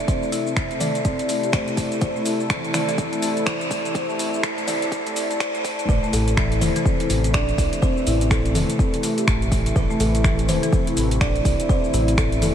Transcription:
Already playing: analog synth pad C3 A3 E4 A4
0.08 marimba C4, kalimba C5, kick, closed hi-hat, cabasa
0.22 marimba E4, cabasa
0.32 marimba E4, open hi-hat, cabasa
0.47 marimba C4, cabasa
0.56 finger snap, kick, closed hi-hat, cabasa
0.71 marimba C4, closed hi-hat, cabasa
0.80 marimba A3, kalimba D5, open hi-hat, mid tom, cabasa
0.95 closed hi-hat, cabasa
1.05 marimba C4, kick, closed hi-hat, cabasa
1.19 closed hi-hat, cabasa
1.29 marimba A3, open hi-hat, cabasa
1.43 marimba G4, closed hi-hat, cabasa
1.52 marimba A3, kalimba C5, finger snap, kick, closed hi-hat, cabasa
1.68 closed hi-hat, cabasa
1.77 marimba A3, kick, open hi-hat, cabasa
1.92 closed hi-hat, cabasa
2.01 kalimba C5, kick, closed hi-hat, cabasa
2.16 marimba A3, cabasa
2.26 open hi-hat, cabasa
2.40 cabasa
2.50 marimba E3, finger snap, kick, closed hi-hat, cabasa
2.64 closed hi-hat, cabasa
2.74 kalimba D5, finger snap, open hi-hat, mid tom, cabasa
2.88 marimba E3, closed hi-hat, cabasa
2.98 kick, closed hi-hat, cabasa
3.12 marimba A3, closed hi-hat, cabasa
3.22 open hi-hat, cabasa
3.37 closed hi-hat, cabasa
3.46 marimba E3, kalimba C5, finger snap, kick, closed hi-hat, cabasa
3.61 closed hi-hat, cabasa
3.71 kick, open hi-hat, cabasa
3.85 marimba E3, closed hi-hat, cabasa
3.94 kalimba C5, kick, closed hi-hat, cabasa
4.09 marimba A3, cabasa
4.19 open hi-hat, cabasa
4.34 cabasa
4.43 finger snap, kick, closed hi-hat, cabasa
4.58 marimba A3, closed hi-hat, cabasa
4.67 kalimba D5, open hi-hat, mid tom, cabasa
4.82 closed hi-hat, cabasa
4.92 kick, closed hi-hat, cabasa
5.06 marimba A3, closed hi-hat, cabasa
5.16 open hi-hat, cabasa
5.30 marimba A3, closed hi-hat, cabasa
5.40 kalimba C5, finger snap, kick, closed hi-hat, cabasa
5.55 marimba A3, closed hi-hat, cabasa
5.64 kick, open hi-hat, cabasa
5.79 marimba A3, closed hi-hat, cabasa
5.89 analog synth bass A1, analog synth pad C3 E3 A3 E4, kalimba B4, kick, cabasa
6.03 marimba A3, cabasa
6.13 analog synth bass A1, kalimba A4, open hi-hat, cabasa
6.28 closed hi-hat, cabasa
6.37 marimba E3, finger snap, kick, cabasa
6.52 closed hi-hat, cabasa
6.61 analog synth bass E1, kalimba C5, open hi-hat, mid tom, cabasa
6.76 marimba E3, closed hi-hat, cabasa
6.86 marimba C4, kick, cabasa
7.00 marimba E4, closed hi-hat, cabasa
7.10 analog synth bass A1, open hi-hat, cabasa
7.24 closed hi-hat, cabasa
7.34 marimba D4, kalimba D5, finger snap, kick, cabasa
7.49 closed hi-hat, cabasa
7.58 analog synth bass C2, kick, open hi-hat, cabasa
7.73 closed hi-hat, cabasa
7.82 marimba C4, kalimba C5, kick, cabasa
7.97 marimba E4, cabasa
8.07 analog synth bass A1, marimba E4, open hi-hat, cabasa
8.21 marimba C4, closed hi-hat, cabasa
8.30 kalimba A4, finger snap, kick, cabasa
8.46 marimba C4, closed hi-hat, cabasa
8.55 analog synth bass E1, marimba A3, kalimba A4, open hi-hat, mid tom, cabasa
8.70 closed hi-hat, cabasa
8.79 marimba C4, kick, cabasa
8.94 closed hi-hat, cabasa
9.03 marimba A3, open hi-hat, cabasa
9.18 marimba G4, closed hi-hat, cabasa
9.28 analog synth bass A1, marimba A3, finger snap, kick, cabasa
9.42 closed hi-hat, cabasa
9.52 marimba A3, kick, open hi-hat, cabasa
9.66 closed hi-hat, cabasa
9.76 analog synth bass A1, kalimba B4, kick, cabasa
9.90 marimba A3, cabasa
10.00 analog synth bass A1, kalimba A4, open hi-hat, cabasa
10.15 closed hi-hat, cabasa
10.24 marimba E3, finger snap, kick, cabasa
10.39 closed hi-hat, cabasa
10.49 analog synth bass E1, kalimba C5, open hi-hat, mid tom, cabasa
10.63 marimba E3, closed hi-hat, cabasa
10.73 marimba C4, kick, cabasa
10.87 marimba E4, closed hi-hat, cabasa
10.97 analog synth bass A1, open hi-hat, cabasa
11.11 closed hi-hat, cabasa
11.21 marimba D4, kalimba D5, finger snap, kick, cabasa
11.36 closed hi-hat, cabasa
11.45 analog synth bass C2, kick, open hi-hat, cabasa
11.60 closed hi-hat, cabasa
11.69 marimba C4, kalimba C5, kick, cabasa
11.84 marimba E4, cabasa
11.94 analog synth bass A1, marimba E4, open hi-hat, cabasa
12.08 marimba C4, closed hi-hat, cabasa
12.18 kalimba A4, finger snap, kick, cabasa
12.32 marimba C4, closed hi-hat, cabasa
12.42 analog synth bass E1, marimba A3, kalimba A4, open hi-hat, mid tom, cabasa

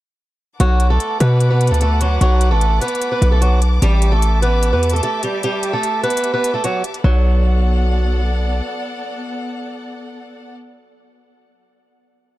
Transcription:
0.60 808-style bass B1, steel-string acoustic guitar F#3 F#4, string section B4 F#5 A5 D6, closed hi-hat
0.80 closed hi-hat
0.90 steel-string acoustic guitar A3 A4
1.00 closed hi-hat
1.20 808-style bass B2, steel-string acoustic guitar B3 B4, closed hi-hat
1.40 closed hi-hat
1.50 steel-string acoustic guitar B3 B4
1.61 closed hi-hat
1.67 808-style bass D2, steel-string acoustic guitar A4, closed hi-hat
1.72 steel-string acoustic guitar A3, closed hi-hat
1.81 steel-string acoustic guitar A3 A4, closed hi-hat
2.01 steel-string acoustic guitar F#3 F#4, closed hi-hat
2.21 808-style bass B1, steel-string acoustic guitar F#3 F#4, closed hi-hat
2.41 closed hi-hat
2.51 808-style bass A1, steel-string acoustic guitar A3 A4
2.61 closed hi-hat
2.81 steel-string acoustic guitar B3 B4, closed hi-hat
2.88 closed hi-hat
2.95 closed hi-hat
3.02 closed hi-hat
3.12 steel-string acoustic guitar B3 B4
3.22 808-style bass B1, closed hi-hat
3.31 steel-string acoustic guitar A3 A4
3.41 steel-string acoustic guitar F#3 F#4, closed hi-hat
3.62 closed hi-hat
3.82 808-style bass A1, steel-string acoustic guitar G3 G4, string section G4 E5, closed hi-hat
4.02 closed hi-hat
4.12 steel-string acoustic guitar A3 A4
4.22 closed hi-hat
4.42 steel-string acoustic guitar B3 B4, closed hi-hat
4.63 closed hi-hat
4.73 808-style bass E2, steel-string acoustic guitar B3 B4
4.83 closed hi-hat
4.90 steel-string acoustic guitar A4, closed hi-hat
4.94 steel-string acoustic guitar A3, closed hi-hat
5.03 steel-string acoustic guitar A3 A4, closed hi-hat
5.23 steel-string acoustic guitar G3 G4, closed hi-hat
5.43 steel-string acoustic guitar G3 G4, closed hi-hat
5.63 closed hi-hat
5.73 steel-string acoustic guitar A3 A4
5.83 closed hi-hat
6.03 steel-string acoustic guitar B3 B4, closed hi-hat
6.10 closed hi-hat
6.17 closed hi-hat
6.24 closed hi-hat
6.34 steel-string acoustic guitar B3 B4
6.44 closed hi-hat
6.54 steel-string acoustic guitar A3 A4
6.64 steel-string acoustic guitar F#3 F#4, closed hi-hat
6.84 closed hi-hat
6.94 closed hi-hat
7.04 808-style bass B1, steel-string acoustic guitar F#3, string section B3 A4 D5 F#5

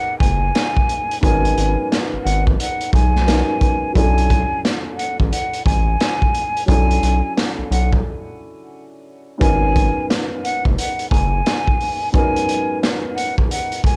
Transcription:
Already playing: upright piano G#2 F#3 B3 C#4 D#4 A#4, flute F#5
0.19 analog synth bass F#1, flute G#5, kick, closed hi-hat
0.55 snare, closed hi-hat
0.77 kick
0.89 closed hi-hat
1.11 closed hi-hat
1.21 analog synth bass G#1, upright piano G#2 F#3 B3 C#4, flute G#5, kick, closed hi-hat
1.26 upright piano D#4 A#4
1.45 closed hi-hat
1.57 analog synth bass G#1, closed hi-hat
1.92 snare, closed hi-hat
2.13 analog synth bass G#1
2.24 analog synth bass G#1, flute F#5, closed hi-hat
2.47 kick
2.60 flute F#5, closed hi-hat
2.81 closed hi-hat
2.93 analog synth bass B1, flute G#5, kick, closed hi-hat
3.16 snare
3.25 upright piano G#2 F#3 B3 C#4 D#4 A#4, snare, closed hi-hat
3.61 kick, closed hi-hat
3.93 analog synth bass B1, upright piano F#3 C#4 D4, kick
3.97 upright piano E4 A4, flute G#5, closed hi-hat
4.18 closed hi-hat
4.30 kick, closed hi-hat
4.65 snare, closed hi-hat
4.97 flute F#5, closed hi-hat
5.20 analog synth bass A1, kick
5.32 flute F#5, closed hi-hat
5.53 closed hi-hat
5.65 analog synth bass A1, flute G#5, kick, closed hi-hat
6.00 snare, closed hi-hat
6.22 kick
6.34 closed hi-hat
6.57 closed hi-hat
6.66 analog synth bass B1, upright piano F#3 C#4 D4, flute G#5, kick, closed hi-hat
6.70 upright piano E4 A4
6.91 closed hi-hat
7.03 analog synth bass B1, closed hi-hat
7.37 snare, closed hi-hat
7.58 analog synth bass B1
7.71 analog synth bass B1, flute F#5, closed hi-hat
7.93 kick
9.38 analog synth bass G#1, upright piano G#2 F#3 B3 C#4, kick
9.42 upright piano D#4 A#4, flute G#5, closed hi-hat
9.76 kick, closed hi-hat
10.10 snare, closed hi-hat
10.44 flute F#5, closed hi-hat
10.65 analog synth bass F#1, kick
10.78 flute F#5, closed hi-hat
10.99 closed hi-hat
11.10 analog synth bass F#1, flute G#5, kick, closed hi-hat
11.46 snare, closed hi-hat
11.68 kick
11.80 open hi-hat
12.12 upright piano G#2 F#3 B3 C#4, flute G#5, kick, closed hi-hat
12.17 upright piano D#4 A#4
12.36 closed hi-hat
12.49 closed hi-hat
12.83 snare, closed hi-hat
13.15 flute F#5, closed hi-hat
13.38 kick
13.51 flute F#5, closed hi-hat
13.72 closed hi-hat
13.84 flute G#5, kick, closed hi-hat

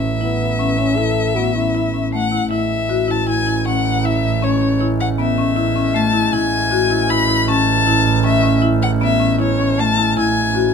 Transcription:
Already playing: double bass A1, violin E5
0.21 french horn B3, marimba E4
0.59 marimba C#4
0.78 marimba C#4, french horn C#4
0.97 marimba E4, french horn A4
1.35 marimba B3, french horn F#4
1.55 marimba C#4, french horn E4
1.75 marimba E4
1.94 marimba C#4
2.13 marimba A3, violin F#5
2.32 marimba E4
2.50 double bass A1, woodwind section G#3 A3 C#4, marimba E4, violin E5
2.89 marimba F#4
3.08 marimba E4, violin A5
3.27 marimba E4, violin G#5
3.47 marimba E4
3.65 marimba C#4, violin F#5
4.04 marimba E4, violin E5
4.43 marimba C#4, violin C#5
4.61 marimba C#4
4.81 marimba E4
5.00 violin F#5
5.18 marimba B3, violin E5
5.38 marimba C#4
5.56 marimba E4
5.76 marimba C#4
5.94 marimba A3, violin A5
6.13 marimba E4
6.33 double bass A1, marimba E4, violin G#5
6.71 marimba F#4
6.91 marimba E4
7.09 marimba E4, violin B5
7.28 marimba E4
7.48 marimba C#4, violin A5
7.87 marimba E4
8.24 marimba C#4, violin E5
8.43 marimba C#4
8.62 marimba E4
8.82 violin F#5
9.01 marimba B3, violin E5
9.20 marimba C#4
9.39 marimba E4, violin C#5
9.59 marimba C#4
9.78 marimba A3, violin A5
9.98 marimba E4
10.16 double bass A1, marimba E4, violin G#5
10.55 marimba F#4

